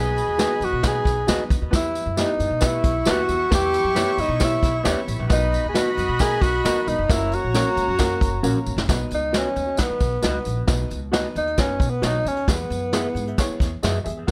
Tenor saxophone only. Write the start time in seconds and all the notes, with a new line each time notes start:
Already playing: G#4
0.64 F#4
0.87 G#4
1.75 E4
2.20 D#4
2.67 E4
3.10 F#4
3.54 G4
4.20 D#4
4.44 E4
5.32 D#4
5.69 G#4
5.76 F#4
6.20 G#4
6.42 F#4
6.88 D#4
7.12 E4
7.34 F#4
9.14 D#4
9.37 C#4
9.80 B3
10.25 B3
11.37 D#4
11.60 C#4
11.90 B3
12.06 D#4
12.28 C#4
12.50 B3